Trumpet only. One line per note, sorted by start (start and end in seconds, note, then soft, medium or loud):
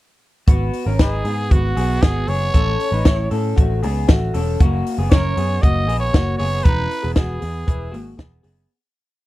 1.02 1.53 G#4 medium
1.52 2.04 F#4 medium
2.02 2.30 G#4 medium
2.29 3.32 C#5 loud
5.11 5.64 C#5 loud
5.62 5.99 D#5 loud
6.00 6.36 C#5 medium
6.38 6.65 C#5 medium
6.64 7.14 B4 loud
7.15 8.14 G#4 medium